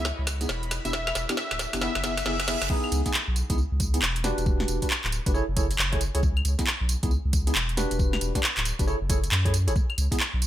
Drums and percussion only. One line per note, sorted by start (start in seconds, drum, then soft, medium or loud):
0.05 snare medium
0.05 tambourine soft
0.27 kick loud
0.27 snare medium
0.27 closed hi-hat loud
0.27 tambourine medium
0.41 closed hi-hat medium
0.41 tambourine soft
0.49 snare medium
0.49 tambourine soft
0.63 closed hi-hat medium
0.71 snare medium
0.71 closed hi-hat medium
0.71 tambourine medium
0.85 closed hi-hat medium
0.85 tambourine soft
0.93 kick loud
0.93 snare medium
0.93 tambourine soft
1.07 snare medium
1.07 claves medium
1.15 snare medium
1.15 closed hi-hat loud
1.15 tambourine medium
1.29 snare medium
1.29 closed hi-hat medium
1.29 tambourine soft
1.37 snare medium
1.37 tambourine soft
1.51 kick medium
1.51 snare medium
1.59 snare loud
1.59 closed hi-hat medium
1.59 tambourine medium
1.73 kick loud
1.73 snare medium
1.73 closed hi-hat medium
1.73 tambourine soft
1.81 snare loud
1.81 tambourine soft
1.95 snare medium
2.04 kick loud
2.04 snare loud
2.04 closed hi-hat loud
2.04 tambourine medium
2.17 snare loud
2.17 closed hi-hat medium
2.17 tambourine soft
2.26 snare loud
2.26 tambourine soft
2.40 kick medium
2.40 snare loud
2.40 closed hi-hat medium
2.48 snare loud
2.48 closed hi-hat medium
2.48 tambourine medium
2.62 snare medium
2.62 closed hi-hat medium
2.62 tambourine soft
2.70 kick loud
2.70 crash loud
2.70 tambourine soft
2.84 claves medium
2.92 closed hi-hat loud
2.92 tambourine medium
3.06 kick medium
3.06 snare soft
3.06 closed hi-hat medium
3.06 tambourine soft
3.14 clap loud
3.14 tambourine soft
3.36 closed hi-hat loud
3.36 tambourine medium
3.50 kick loud
3.50 closed hi-hat medium
3.50 tambourine soft
3.58 tambourine soft
3.80 kick loud
3.80 closed hi-hat loud
3.80 tambourine medium
3.94 closed hi-hat medium
3.94 tambourine soft
4.02 clap loud
4.02 tambourine soft
4.16 closed hi-hat medium
4.24 snare medium
4.24 closed hi-hat loud
4.24 tambourine medium
4.38 closed hi-hat medium
4.38 tambourine soft
4.46 kick loud
4.46 tambourine soft
4.60 snare medium
4.68 closed hi-hat loud
4.68 tambourine medium
4.82 kick medium
4.82 closed hi-hat medium
4.82 tambourine soft
4.90 clap loud
4.90 tambourine soft
5.04 clap medium
5.12 closed hi-hat medium
5.12 tambourine medium
5.26 kick loud
5.26 closed hi-hat medium
5.26 tambourine soft
5.35 tambourine soft
5.57 kick loud
5.57 closed hi-hat loud
5.57 tambourine medium
5.71 closed hi-hat medium
5.71 tambourine soft
5.79 clap loud
5.79 tambourine soft
5.93 kick medium
5.93 closed hi-hat medium
6.01 closed hi-hat medium
6.01 tambourine medium
6.15 closed hi-hat medium
6.15 tambourine soft
6.23 kick loud
6.23 tambourine soft
6.37 claves medium
6.45 closed hi-hat loud
6.45 tambourine medium
6.59 kick medium
6.59 snare soft
6.59 closed hi-hat medium
6.59 tambourine soft
6.67 clap loud
6.67 tambourine soft
6.89 closed hi-hat medium
6.89 tambourine medium
7.03 kick loud
7.03 closed hi-hat medium
7.03 tambourine soft
7.11 tambourine soft
7.33 kick loud
7.33 closed hi-hat loud
7.33 tambourine medium
7.47 closed hi-hat medium
7.47 tambourine soft
7.55 clap loud
7.55 tambourine soft
7.69 closed hi-hat medium
7.77 snare medium
7.77 closed hi-hat medium
7.77 tambourine medium
7.91 closed hi-hat medium
7.91 tambourine soft
7.99 kick loud
7.99 tambourine soft
8.13 snare medium
8.13 claves medium
8.21 closed hi-hat loud
8.21 tambourine medium
8.35 kick medium
8.35 snare soft
8.35 closed hi-hat medium
8.35 tambourine soft
8.43 clap loud
8.43 tambourine soft
8.57 clap medium
8.57 closed hi-hat soft
8.65 closed hi-hat medium
8.65 tambourine medium
8.79 kick loud
8.79 closed hi-hat medium
8.79 tambourine soft
8.88 tambourine soft
9.10 kick loud
9.10 closed hi-hat loud
9.10 tambourine medium
9.24 closed hi-hat medium
9.24 tambourine soft
9.32 clap loud
9.32 tambourine soft
9.46 kick medium
9.46 closed hi-hat medium
9.54 closed hi-hat medium
9.54 tambourine medium
9.68 closed hi-hat medium
9.68 tambourine soft
9.76 kick loud
9.76 tambourine soft
9.90 claves medium
9.98 closed hi-hat loud
9.98 tambourine medium
10.12 kick medium
10.12 snare soft
10.12 closed hi-hat medium
10.12 tambourine soft
10.20 clap loud
10.20 tambourine soft
10.42 closed hi-hat medium
10.42 tambourine medium